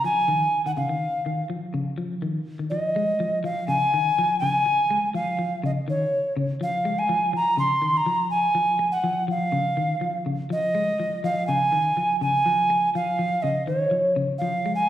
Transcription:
0.04 clean electric guitar F3, ocarina G#5
0.28 clean electric guitar D#3
0.66 clean electric guitar D#3, ocarina F#5
0.77 clean electric guitar C#3, ocarina F5
0.89 clean electric guitar D#3
1.26 clean electric guitar D#3
1.50 clean electric guitar F3
1.74 clean electric guitar C#3
1.98 clean electric guitar F3
2.22 clean electric guitar D#3
2.59 clean electric guitar D#3
2.70 clean electric guitar F3, ocarina D#5
2.96 clean electric guitar G#3
3.20 clean electric guitar F3
3.44 clean electric guitar F3, ocarina F5
3.68 clean electric guitar C#3, ocarina G#5
3.94 clean electric guitar D#3
4.18 clean electric guitar F3
4.40 clean electric guitar C#3, ocarina G#5
4.66 muted clean electric guitar stroke
4.91 clean electric guitar G#3
5.15 clean electric guitar F3, ocarina F5
5.39 clean electric guitar F3
5.63 clean electric guitar C#3, ocarina D#5
5.88 clean electric guitar D#3, ocarina C#5
6.36 clean electric guitar C#3
6.61 clean electric guitar F3, ocarina F5
6.85 clean electric guitar G#3
6.99 ocarina G#5
7.09 clean electric guitar F3
7.33 clean electric guitar F3, ocarina A#5
7.57 clean electric guitar C#3, ocarina C6
7.82 clean electric guitar D#3
7.97 ocarina A#5
8.06 clean electric guitar F3
8.31 ocarina G#5
8.55 clean electric guitar F3
8.79 muted clean electric guitar stroke
8.92 ocarina F#5
9.04 clean electric guitar F3
9.28 clean electric guitar F3, ocarina F5
9.52 clean electric guitar C#3
9.77 clean electric guitar D#3
10.01 clean electric guitar F3
10.26 clean electric guitar C#3
10.50 clean electric guitar F3, ocarina D#5
10.75 clean electric guitar G#3
11.00 clean electric guitar F3
11.24 clean electric guitar F3, ocarina F5
11.47 clean electric guitar C#3, ocarina G#5
11.72 clean electric guitar D#3
11.97 clean electric guitar F3
12.21 clean electric guitar C#3, ocarina G#5
12.46 clean electric guitar F3
12.70 muted clean electric guitar stroke
12.95 clean electric guitar F3, ocarina F5
13.19 clean electric guitar F3
13.42 clean electric guitar C#3, ocarina D#5
13.67 clean electric guitar D#3, ocarina C#5
13.91 clean electric guitar F3
14.16 clean electric guitar C#3
14.38 clean electric guitar F3, ocarina F5
14.66 clean electric guitar G#3
14.75 ocarina G#5

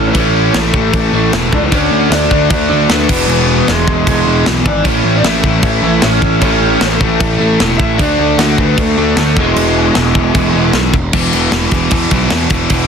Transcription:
Already playing: picked electric bass A1, overdriven electric guitar A2 E3 A3, distorted electric guitar A2 E3 A3
0.09 lead electric guitar B4
0.13 picked electric bass A1, overdriven electric guitar A2 E3 A3, kick, crash
0.18 lead electric guitar C#4 C#5
0.54 picked electric bass A1, lead electric guitar A3, snare, crash
0.58 lead electric guitar A4
0.72 picked electric bass A1, distorted electric guitar A2 E3 A3, kick
0.94 picked electric bass A1, lead electric guitar A3 A4, kick, crash
1.13 picked electric bass A1, overdriven electric guitar A2 E3 A3
1.32 picked electric bass E1, overdriven electric guitar A2 E3 A3, snare, crash
1.52 picked electric bass C#2, lead electric guitar D4 D5, kick
1.65 lead electric guitar B4
1.72 picked electric bass D2, overdriven electric guitar D3 A3 D4, lead electric guitar C#4 C#5, kick, crash
1.92 picked electric bass D2
2.10 picked electric bass D2, lead electric guitar D4 D5, snare, crash
2.30 picked electric bass D2, distorted electric guitar D3 A3 D4, kick
2.50 picked electric bass D2, lead electric guitar D4 D5, kick, crash
2.69 picked electric bass D2, overdriven electric guitar D3 A3 D4
2.89 picked electric bass D2, overdriven electric guitar D3 A3 D4, lead electric guitar B3 B4, snare, crash
3.09 picked electric bass E1, overdriven electric guitar E2 B2 E3, kick, crash
3.28 picked electric bass E1, lead electric guitar B3 B4, crash
3.67 picked electric bass E1, distorted electric guitar E2 B2 E3, lead electric guitar G#3 G#4, snare, crash
3.87 picked electric bass E1, kick
4.07 picked electric bass E1, overdriven electric guitar E2 B2 E3, lead electric guitar G#3 G#4, kick, crash
4.26 picked electric bass E1, overdriven electric guitar E2 B2 E3
4.45 picked electric bass B1, snare, crash
4.65 picked electric bass G#1, lead electric guitar D4 D5, kick
4.84 picked electric bass A1, overdriven electric guitar A2 E3 A3, lead electric guitar C#4 C#5, kick, crash
5.04 picked electric bass A1
5.17 lead electric guitar D5
5.24 picked electric bass A1, lead electric guitar E4 E5, snare, crash
5.43 picked electric bass A1, distorted electric guitar A2 E3 A3, kick
5.63 picked electric bass A1, lead electric guitar E4 E5, kick, crash
5.82 picked electric bass A1, overdriven electric guitar E3 A3
5.86 overdriven electric guitar A2
6.02 picked electric bass A1, overdriven electric guitar A2 E3 A3, lead electric guitar C#4 C#5, snare, crash
6.22 picked electric bass A1, kick
6.41 picked electric bass A1, overdriven electric guitar A2 E3 A3, lead electric guitar C#4 C#5, kick, crash
6.81 picked electric bass A1, lead electric guitar A3 A4, snare, crash
7.00 picked electric bass A1, distorted electric guitar A2 E3 A3, kick
7.20 picked electric bass A1, lead electric guitar A3 A4, kick, crash
7.39 picked electric bass A1, overdriven electric guitar A2 E3 A3
7.59 picked electric bass E1, overdriven electric guitar A2 E3 A3, snare, crash
7.78 picked electric bass A1, lead electric guitar E4 E5, kick
7.98 picked electric bass D2, overdriven electric guitar D3 A3 D4, lead electric guitar D4 D5, kick, crash
8.19 picked electric bass D2
8.38 picked electric bass D2, lead electric guitar F#4 F#5, snare, crash
8.58 picked electric bass D2, distorted electric guitar D3 A3 D4, lead electric guitar B3 B4, kick
8.78 picked electric bass D2, lead electric guitar A3 A4, kick, crash
8.97 picked electric bass D2, overdriven electric guitar D3 A3 D4
9.16 picked electric bass D2, overdriven electric guitar D3 A3 D4, lead electric guitar A3 A4, snare, crash
9.36 picked electric bass E1, overdriven electric guitar E2 B2 E3, lead electric guitar G#3 G#4, kick
9.56 picked electric bass E1, crash
9.95 picked electric bass E1, distorted electric guitar E2 B2 E3, snare, crash
10.15 picked electric bass E1, kick
10.35 picked electric bass E1, overdriven electric guitar E2 B2 E3, kick, crash
10.53 picked electric bass E1, overdriven electric guitar B2 E3
10.58 overdriven electric guitar E2
10.73 picked electric bass B1, snare, crash
10.94 picked electric bass E1, kick
11.13 picked electric bass E1, overdriven electric guitar E2 B2 E3, kick, crash
11.32 picked electric bass E1, overdriven electric guitar E2 B2 E3, crash
11.52 picked electric bass E1, overdriven electric guitar E2 B2 E3, snare, crash
11.71 picked electric bass E1, overdriven electric guitar E2 B2 E3, kick, crash
11.91 overdriven electric guitar E2 B2 E3, picked electric bass E2, kick, crash
12.11 picked electric bass B1, overdriven electric guitar E2 B2 E3, kick, crash
12.30 picked electric bass E2, overdriven electric guitar E2 B2 E3, snare, crash
12.50 picked electric bass E1, overdriven electric guitar E2 B2 E3, kick, crash
12.70 picked electric bass E1, overdriven electric guitar E2 B2 E3, kick, crash

